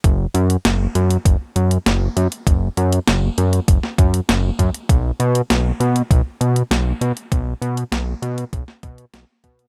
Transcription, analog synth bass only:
\new Staff \with { instrumentName = "Analog synth bass" } { \clef bass \time 4/4 \key b \lydian \tempo 4 = 99 fis,,8 fis,8 fis,,8 fis,8 fis,,8 fis,8 fis,,8 fis,8 | fis,,8 fis,8 fis,,8 fis,8 fis,,8 fis,8 fis,,8 fis,8 | b,,8 b,8 b,,8 b,8 b,,8 b,8 b,,8 b,8 | b,,8 b,8 b,,8 b,8 b,,8 b,8 b,,8 b,8 | }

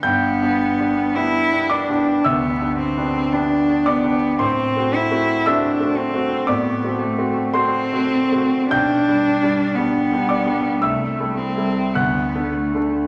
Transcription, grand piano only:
\new Staff \with { instrumentName = "Grand piano" } { \time 4/4 \key g \major \tempo 4 = 56 << { <g'' g'''>4. <d'' d'''>8 <e'' e'''>4. <d'' d'''>8 | <c'' c'''>4 <e'' e'''>4 <d'' d'''>4 <c'' c'''>4 | <g'' g'''>4. <d'' d'''>8 <e'' e'''>4 <fis'' fis'''>4 | } \\ { \tuplet 3/2 { g,8 <b d' g'>8 <b d' g'>8 <b d' g'>8 <b d' g'>8 <b d' g'>8 d,8 <b d' g'>8 <b d' g'>8 <b d' g'>8 <b d' g'>8 <b d' g'>8 } | \tuplet 3/2 { a,8 <a c' fis'>8 <a c' fis'>8 <a c' fis'>8 <a c' fis'>8 <a c' fis'>8 a,8 <a c' fis'>8 <a c' fis'>8 <a c' fis'>8 <a c' fis'>8 <a c' fis'>8 } | \tuplet 3/2 { b,,8 <g d' g'>8 <g d' g'>8 <g d' g'>8 <g d' g'>8 <g d' g'>8 c,8 <g e' a'>8 <g e' a'>8 d,8 <d d' a'>8 <d d' a'>8 } | } >> }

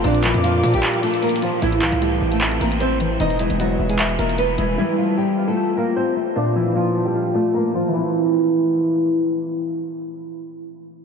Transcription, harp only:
\new Staff \with { instrumentName = "Harp" } { \time 4/4 \key a \phrygian \tempo 4 = 152 bes,8 f8 bes8 d'8 f'8 d'8 bes8 f8 | a,8 e8 a8 c'8 e'8 c'8 a8 e8 | e8 gis8 b8 e'8 e''8 e'8 b8 gis8 | g8 a8 c'8 f'8 g'8 f'8 c'8 a8 |
bes,8 f8 bes8 d'8 f'8 d'8 bes8 f8 | <e a c' e'>1~ | <e a c' e'>1 | }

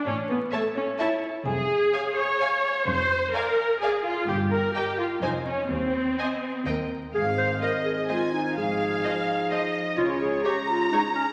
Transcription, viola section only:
\new Staff \with { instrumentName = "Viola section" } { \time 3/4 \key a \major \tempo 4 = 128 cis'8 b8 a8 cis'8 e'8 r8 | \key aes \major aes'4. des''4. | c''4 bes'4 aes'8 f'8 | g'8 bes'8 g'8 f'8 ees'8 des'8 |
c'2 r4 | r4 <aes c''>4 <aes c''>4 | r4 <f c''>4 <f c''>4 | r4 <aes aes'>4 <aes aes'>4 | }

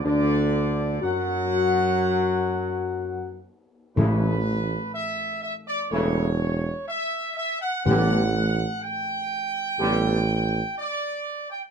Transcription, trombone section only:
\new Staff \with { instrumentName = "Trombone section" } { \clef bass \time 4/4 \key a \major \tempo 4 = 62 d4 fis2~ fis8 r8 | <cis e>8 r4. <cis e>8 r4. | <d g>8 r4. <d g>8 r4. | }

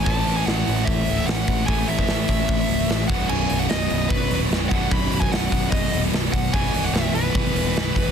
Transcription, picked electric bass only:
\new Staff \with { instrumentName = "Picked electric bass" } { \clef bass \time 4/4 \key a \lydian \tempo 4 = 148 a,,8 a,,8 a,,8 a,,8 a,,8 cis,,8 a,,8 a,,8 | a,,8 a,,8 a,,8 a,,8 a,,8 cis,,8 a,,8 b,,,8 | b,,,8 b,,,8 b,,,8 b,,,8 b,,,8 dis,,8 b,,,8 b,,,8 | b,,,8 b,,,8 b,,,8 b,,,8 b,,,8 dis,,8 b,,,8 b,,,8 |
b,,,8 b,,,8 b,,,8 b,,,8 b,,,8 dis,,8 b,,,8 b,,,8 | }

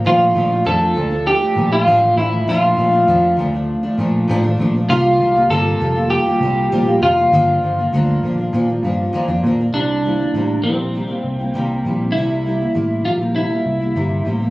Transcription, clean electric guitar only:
\new Staff \with { instrumentName = "Clean electric guitar" } { \time 4/4 \key c \mixolydian \tempo 4 = 99 f'4 a'4 g'8. f'8. e'8 | f'4. r2 r8 | f'4 a'4 g'4. f'8~ | f'2.~ f'8 r8 |
d'4. c'2~ c'8 | e'4. f'8 e'4. r8 | }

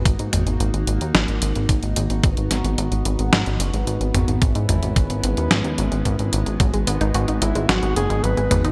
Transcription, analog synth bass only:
\new Staff \with { instrumentName = "Analog synth bass" } { \clef bass \time 4/4 \key gis \minor \tempo 4 = 110 gis,,16 gis,16 gis,,16 gis,,16 gis,,16 gis,,16 gis,,16 dis,16 gis,,16 gis,,16 gis,,16 gis,,16 gis,,16 gis,,16 gis,,16 gis,,16 | gis,,16 gis,,16 gis,,16 gis,,16 gis,,16 gis,,16 gis,,16 gis,,16 gis,,16 gis,,16 fis,,16 gis,,16 gis,,16 gis,,16 gis,,16 gis,,16 | gis,,16 gis,16 gis,,16 gis,,16 gis,,16 gis,,16 gis,,16 dis,16 gis,,16 dis,16 gis,,16 gis,,16 gis,,16 gis,,16 gis,,16 gis,,16 | gis,,16 gis,,16 gis,,16 gis,,16 gis,,16 gis,,16 gis,,16 gis,,16 gis,,16 gis,,16 fis,,16 gis,,16 gis,,16 gis,,16 gis,,16 gis,,16 | }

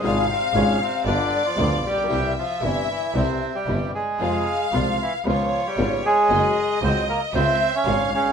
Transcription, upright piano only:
\new Staff \with { instrumentName = "Upright piano" } { \clef bass \time 4/4 \key f \minor \tempo 4 = 115 <aes,, aes, c f aes f'>8 r8 <aes,, aes, c f aes f'>8 r8 <g,, g, d g b f'>8 r8 <d, d g b f'>8 r32 a,,32 bes,,32 b,,32 | <c, c e g e'>8 r8 <g,, g, c e g e'>8 r8 <c, c e g e'>8 r8 <g,, g, c e g e'>8 r8 | <f, c f aes f'>8 r8 <c, c f aes f'>8 r8 <des, des aes ces' f'>8 r8 <aes,, aes, des aes ces' f'>8 r8 | <ges, des ges aes ges'>8 r8 <des, des ges aes ges'>8 r8 <des, des f aes f'>8 r8 <aes,, aes, des f aes f'>8 r32 g,,32 aes,,32 r32 | }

